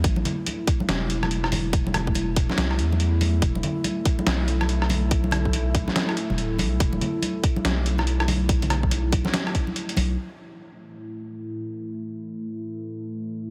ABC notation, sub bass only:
X:1
M:4/4
L:1/16
Q:"Swing 16ths" 1/4=142
K:Ephr
V:1 name="Sub bass" clef=bass
A,,,2 z6 E,,,8- | E,,,6- E,,, z C,,2 E,,6 | E,,,2 z6 B,,,8- | B,,,6- B,,, z4 E,,, D,,,2 B,,,2 |
E,,,2 z6 B,,,8- | B,,,6- B,,, z6 z B,,,2 | z16 | z16 |]